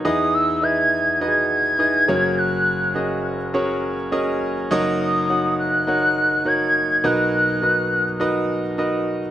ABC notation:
X:1
M:4/4
L:1/8
Q:1/4=103
K:B
V:1 name="Soft synth lead"
d' e' g'2 g'4 | f'3 z4 z | z d'2 f'3 g'2 | f'6 z2 |]
V:2 name="Grand piano"
[DEGBd] z [EGBde] z [DEFGBd] z [DEGBd] [CFGAc]- | [CFGAc] z [CFGAd] z [CFGAc] z [CFGAd] z | [DFAcd] z [DFAcf] z [DFAcf] z [DFAcf] z | [DFABd] z [DFABd] z [DFABd] z [DFABd] z |]
V:3 name="Grand piano" clef=bass
[E,,E,]6- [E,,E,] [F,,,F,,]- | [F,,,F,,]6- [F,,,F,,] z | [F,,,F,,]8 | [B,,,B,,]8 |]